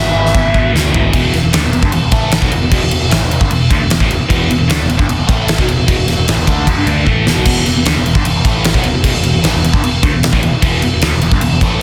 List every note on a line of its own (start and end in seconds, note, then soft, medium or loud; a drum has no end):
0.00 0.11 G#1 loud
0.00 0.13 E2 medium
0.00 0.13 B2 medium
0.00 0.13 E3 medium
0.00 0.70 E5 medium
0.14 0.31 G#1 medium
0.14 0.33 E2 medium
0.14 0.34 B2 medium
0.14 0.34 E3 medium
0.26 snare soft
0.34 0.51 G#1 medium
0.34 0.52 E2 medium
0.34 0.53 B2 medium
0.34 0.53 E3 loud
0.34 kick loud
0.34 crash medium
0.53 0.71 G#1 medium
0.53 0.71 E2 medium
0.53 0.72 B2 loud
0.53 0.73 E3 medium
0.53 kick medium
0.73 0.90 D2 loud
0.73 0.92 E2 medium
0.73 0.92 B2 loud
0.73 0.92 E3 loud
0.73 snare medium
0.93 1.10 G#1 medium
0.93 1.12 E2 medium
0.93 1.12 B2 loud
0.93 1.12 E3 medium
0.93 floor tom medium
1.13 1.32 E1 medium
1.13 1.33 E2 loud
1.13 1.33 B2 loud
1.13 1.33 E3 loud
1.13 kick loud
1.13 crash medium
1.33 1.42 E1 medium
1.33 1.42 E2 medium
1.33 1.42 B2 medium
1.33 snare soft
1.33 crash medium
1.43 1.52 E1 medium
1.43 1.53 E2 medium
1.43 1.52 B2 medium
1.53 1.63 D2 loud
1.53 1.62 D3 medium
1.53 1.62 A3 loud
1.53 snare loud
1.53 crash medium
1.63 1.73 E1 medium
1.63 1.71 E2 medium
1.63 1.72 B2 medium
1.72 1.82 E1 medium
1.72 1.82 E2 medium
1.72 1.83 B2 medium
1.72 crash medium
1.82 1.92 G1 medium
1.82 1.92 G2 medium
1.82 1.92 D3 medium
1.82 kick loud
1.92 2.03 E1 medium
1.92 2.01 E2 medium
1.92 2.02 B2 medium
1.92 crash medium
2.02 2.11 E1 medium
2.02 2.12 E2 medium
2.02 2.12 B2 medium
2.11 2.40 A1 loud
2.11 2.41 A2 medium
2.11 2.41 E3 medium
2.11 2.42 A3 loud
2.11 kick loud
2.11 crash medium
2.31 snare loud
2.31 crash medium
2.41 2.51 B1 loud
2.41 2.51 B2 medium
2.41 2.51 F#3 loud
2.41 kick loud
2.52 2.61 E1 medium
2.52 2.61 E2 medium
2.52 2.61 B2 medium
2.52 crash medium
2.62 2.71 E1 medium
2.62 2.70 E2 medium
2.62 2.71 B2 medium
2.71 2.81 E1 loud
2.71 2.81 E2 loud
2.71 2.81 B2 loud
2.71 kick loud
2.71 crash loud
2.82 2.91 E1 medium
2.82 2.91 E2 medium
2.82 2.91 B2 medium
2.91 3.02 E1 medium
2.91 3.00 E2 medium
2.91 3.00 B2 medium
2.91 crash medium
3.01 3.11 E1 medium
3.01 3.12 E2 medium
3.01 3.10 B2 medium
3.10 3.21 A1 loud
3.10 3.20 A2 medium
3.10 3.21 E3 medium
3.10 snare loud
3.10 crash medium
3.21 3.30 E1 medium
3.21 3.30 E2 medium
3.21 3.31 B2 medium
3.31 3.41 E1 medium
3.31 3.40 E2 medium
3.31 3.40 B2 medium
3.31 crash medium
3.40 3.50 G1 medium
3.40 3.50 G2 medium
3.40 3.50 D3 medium
3.40 kick loud
3.50 3.70 E1 medium
3.50 3.67 E2 medium
3.50 3.67 B2 medium
3.50 crash medium
3.70 3.80 D2 loud
3.70 3.80 D3 loud
3.70 3.80 A3 loud
3.70 kick loud
3.70 crash medium
3.80 3.90 E1 medium
3.80 3.89 E2 medium
3.80 3.90 B2 medium
3.90 4.00 E1 medium
3.90 4.01 E2 medium
3.90 4.00 B2 medium
3.90 snare loud
3.90 crash medium
4.00 4.10 A1 medium
4.00 4.09 A2 loud
4.00 4.10 E3 medium
4.00 kick loud
4.09 4.20 E1 medium
4.09 4.18 E2 medium
4.09 4.20 B2 medium
4.09 crash medium
4.20 muted overdriven electric guitar stroke medium
4.20 muted picked electric bass stroke soft
4.29 4.49 E1 loud
4.29 4.47 E2 loud
4.29 4.48 B2 loud
4.29 4.49 E3 loud
4.29 kick loud
4.29 crash medium
4.48 4.59 E1 medium
4.48 4.57 E2 medium
4.48 4.57 B2 medium
4.48 crash medium
4.58 4.69 E1 medium
4.58 4.69 E2 medium
4.58 4.67 B2 medium
4.68 4.79 D2 loud
4.68 4.78 D3 medium
4.68 4.78 A3 medium
4.68 snare loud
4.68 crash medium
4.78 4.88 E1 medium
4.78 4.87 E2 medium
4.78 4.87 B2 medium
4.88 4.98 E1 medium
4.88 4.97 E2 medium
4.88 4.97 B2 medium
4.88 crash medium
4.97 5.08 G1 loud
4.97 5.07 G2 medium
4.97 5.07 D3 medium
4.97 kick loud
5.07 5.19 E1 medium
5.07 5.16 E2 medium
5.07 5.16 B2 medium
5.07 crash medium
5.17 5.28 E1 medium
5.17 5.28 E2 medium
5.17 5.26 B2 medium
5.26 5.57 A1 medium
5.26 5.56 A2 loud
5.26 5.56 E3 loud
5.26 5.58 A3 loud
5.26 kick loud
5.26 crash medium
5.48 snare loud
5.48 crash medium
5.56 5.68 B1 loud
5.56 5.65 B2 medium
5.56 5.67 F#3 loud
5.56 kick loud
5.66 5.78 E1 medium
5.66 5.75 E2 medium
5.66 5.75 B2 medium
5.66 crash medium
5.76 5.87 E1 medium
5.76 5.85 E2 medium
5.76 5.85 B2 medium
5.86 5.97 E1 medium
5.86 5.95 E2 loud
5.86 5.96 B2 loud
5.86 kick loud
5.86 crash loud
5.97 6.07 E1 medium
5.97 6.06 E2 medium
5.97 6.07 B2 medium
6.07 6.17 E1 medium
6.07 6.16 E2 medium
6.07 6.16 B2 medium
6.07 snare soft
6.07 crash medium
6.17 6.27 E1 medium
6.17 6.27 E2 medium
6.17 6.28 B2 medium
6.28 6.37 A1 medium
6.28 6.37 A2 medium
6.28 6.38 E3 medium
6.28 snare loud
6.28 crash medium
6.37 6.47 E1 medium
6.37 6.48 E2 medium
6.37 6.46 B2 medium
6.47 6.66 D2 medium
6.47 6.66 D3 medium
6.47 6.67 A3 medium
6.47 6.67 D4 medium
6.47 kick medium
6.47 crash medium
6.67 6.75 E1 loud
6.67 6.76 E2 medium
6.67 6.77 B2 medium
6.67 kick medium
6.67 crash medium
6.76 6.86 G1 medium
6.76 6.87 G2 loud
6.76 6.85 D3 loud
6.86 7.05 D2 loud
6.86 7.06 D3 medium
6.86 7.06 A3 medium
6.86 7.07 D4 medium
6.86 crash medium
7.06 7.25 A1 medium
7.06 7.26 A2 medium
7.06 7.26 E3 loud
7.06 7.26 A3 medium
7.06 kick medium
7.26 7.36 E1 loud
7.26 7.36 E2 loud
7.26 7.34 B2 loud
7.26 snare medium
7.36 7.45 B1 loud
7.36 7.44 B2 medium
7.36 7.45 F#3 loud
7.45 7.65 E1 loud
7.45 7.64 E2 loud
7.45 7.65 B2 loud
7.45 7.65 E3 loud
7.45 kick loud
7.45 crash loud
7.45 crash medium
7.65 7.75 E1 medium
7.65 7.75 E2 medium
7.65 7.75 B2 medium
7.65 snare soft
7.65 crash medium
7.76 7.85 E1 medium
7.76 7.86 E2 medium
7.76 7.85 B2 medium
7.85 7.95 D2 loud
7.85 7.95 D3 loud
7.85 7.95 A3 medium
7.85 snare loud
7.85 crash medium
7.95 8.04 E1 medium
7.95 8.05 E2 medium
7.95 8.05 B2 medium
8.05 8.15 E1 medium
8.05 8.15 E2 medium
8.05 8.16 B2 medium
8.05 crash medium
8.15 8.25 G1 medium
8.15 8.25 G2 medium
8.15 8.25 D3 medium
8.15 kick loud
8.25 8.34 E1 medium
8.25 8.35 E2 medium
8.25 8.35 B2 medium
8.25 crash medium
8.35 8.44 E1 medium
8.35 8.46 E2 medium
8.35 8.45 B2 medium
8.45 8.73 A1 loud
8.45 8.74 A2 medium
8.45 8.75 E3 medium
8.45 8.75 A3 medium
8.45 kick loud
8.45 crash medium
8.64 snare loud
8.64 crash medium
8.74 8.84 B1 loud
8.74 8.84 B2 medium
8.74 8.85 F#3 loud
8.74 kick loud
8.83 8.93 E1 medium
8.83 8.93 E2 medium
8.83 8.93 B2 medium
8.83 crash medium
8.94 9.03 E1 medium
8.94 9.03 E2 medium
8.94 9.04 B2 medium
9.04 9.14 E1 loud
9.04 9.13 E2 loud
9.04 9.13 B2 loud
9.04 kick loud
9.04 crash medium
9.14 9.24 E1 medium
9.14 9.22 E2 medium
9.14 9.22 B2 medium
9.23 9.34 E1 medium
9.23 9.33 E2 medium
9.23 9.33 B2 medium
9.23 crash medium
9.34 9.43 E1 medium
9.34 9.44 E2 medium
9.34 9.42 B2 medium
9.43 9.53 A1 loud
9.43 9.53 A2 medium
9.43 9.53 E3 loud
9.43 snare loud
9.43 crash medium
9.53 9.63 E1 medium
9.53 9.61 E2 medium
9.53 9.62 B2 medium
9.62 9.73 E1 medium
9.62 9.72 E2 medium
9.62 9.73 B2 medium
9.62 crash medium
9.72 9.83 G1 loud
9.72 9.82 G2 medium
9.72 9.83 D3 medium
9.72 kick loud
9.83 10.02 E1 medium
9.83 9.99 E2 medium
9.83 10.00 B2 medium
9.83 crash medium
10.03 10.13 D2 loud
10.03 10.12 D3 medium
10.03 10.13 A3 loud
10.03 kick loud
10.03 crash medium
10.13 10.22 E1 medium
10.13 10.22 E2 medium
10.13 10.22 B2 medium
10.23 10.32 E1 medium
10.23 10.33 E2 medium
10.23 10.32 B2 medium
10.23 snare loud
10.23 crash medium
10.32 10.42 A1 medium
10.32 10.42 A2 medium
10.32 10.42 E3 loud
10.32 kick loud
10.42 10.52 E1 medium
10.42 10.51 E2 medium
10.42 10.52 B2 medium
10.42 crash medium
10.52 muted overdriven electric guitar stroke medium
10.52 muted picked electric bass stroke soft
10.62 10.81 E1 loud
10.62 10.81 E2 medium
10.62 10.82 B2 loud
10.62 10.82 E3 loud
10.62 kick loud
10.62 crash medium
10.82 10.92 E1 medium
10.82 10.92 E2 medium
10.82 10.92 B2 medium
10.82 crash medium
10.93 11.02 E1 medium
10.93 11.03 E2 medium
10.93 11.02 B2 medium
11.01 11.12 D2 loud
11.01 11.12 D3 medium
11.01 11.12 A3 loud
11.01 snare medium
11.01 crash medium
11.12 11.21 E1 medium
11.12 11.21 E2 medium
11.12 11.22 B2 medium
11.21 11.31 E1 medium
11.21 11.32 E2 medium
11.21 11.32 B2 medium
11.21 crash medium
11.32 11.41 G1 loud
11.32 11.42 G2 medium
11.32 11.42 D3 medium
11.32 kick loud
11.41 11.51 E1 medium
11.41 11.51 E2 medium
11.41 11.52 B2 medium
11.41 crash medium
11.52 11.61 E1 medium
11.52 11.62 E2 medium
11.52 11.62 B2 medium
11.61 11.82 A1 loud
11.61 11.82 A2 medium
11.61 11.82 E3 medium
11.61 11.82 A3 medium
11.61 kick loud
11.61 crash medium